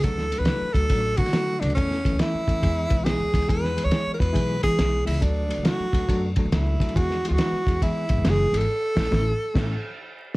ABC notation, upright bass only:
X:1
M:4/4
L:1/16
Q:"Swing" 1/4=139
K:Emix
V:1 name="Upright bass" clef=bass
D,,3 C,, z2 D,,2 A,,,2 D,4 D,,2 | E,,3 D,, z2 E,,2 E,,2 B,,,3 D,, D,,2 | E,,3 D,, z2 E,,2 B,,,2 E,2 B,,,2 C,,2 | D,,3 C,, z2 D,,2 F,,3 C,, C,,2 D,,2 |
E,,3 D,, z2 E,,3 z G,, D,, F,,,2 G,,,2 | z2 A,,,2 A,,,2 z2 A,,,2 z6 |]